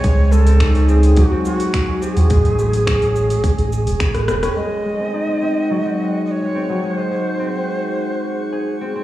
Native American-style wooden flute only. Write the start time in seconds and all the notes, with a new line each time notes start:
Already playing: C#5
0.32 A4
0.88 G#4
1.17 F#4
1.45 F#4
2.02 G4
2.13 G#4
4.56 D#5
6.26 D#5
6.31 C#5
6.84 C5